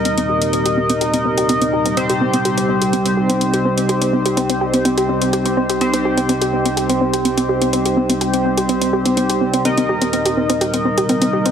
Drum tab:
HH |xx-xxx-xxx-xxx-x|xx-xxx-xxx-xxx-x|xx-xxx-xxx-xxx-x|xx-xxx-xxx-xxx-x|

HH |xx-xxx-xxx-xxx-x|xx-xxx-xxx-xxx-x|